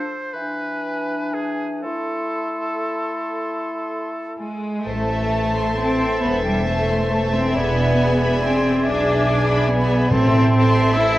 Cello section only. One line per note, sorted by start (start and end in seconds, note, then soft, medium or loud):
4.38 4.83 G#3 medium
4.86 5.77 A3 medium
5.76 6.21 C4 medium
6.23 6.45 B3 medium
6.46 6.67 G3 medium
6.68 7.33 A3 medium
7.36 7.57 C4 medium
7.57 8.44 B3 medium
8.43 8.84 C4 medium
8.85 9.69 D4 medium
9.70 10.11 B3 medium
10.11 10.92 C4 medium
10.94 11.19 E4 medium